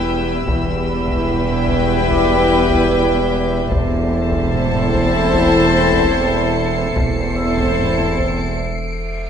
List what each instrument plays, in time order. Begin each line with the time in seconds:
Already playing: double bass section E1, sub bass E1, cello section E2, french horn section G3 B3, viola section E4, glass harmonica G4 E5 B5, violin section B4 G5 B5 E6
0.46 double bass section E1, sub bass E1, cello section E2, french horn section G3 B3, viola section E4, glass harmonica G4 E5 B5, violin section B4 G5, taiko
0.89 vibraphone B5
1.08 taiko
1.28 taiko low-mid
1.48 taiko low-mid
1.68 taiko
2.08 vibraphone D5 D6, taiko
2.69 taiko
3.71 sub bass E1, double bass section E1, cello section E2, french horn section A3 C4, viola section E4, glass harmonica A4 C5 E5, violin section C5 A5 C7, taiko
4.32 taiko
4.53 violin section C#7, taiko low-mid
4.73 taiko low-mid
4.93 taiko
5.34 taiko
5.94 taiko
6.95 sub bass E1, double bass section E1, cello section E2, french horn section A3 C4, viola section E4, glass harmonica A4 C5 E5, violin section C5 A5, taiko, reverse cymbal
7.36 vibraphone E5 E6
7.57 taiko
7.78 taiko low-mid
7.98 taiko low-mid
8.18 taiko
8.48 violin section D7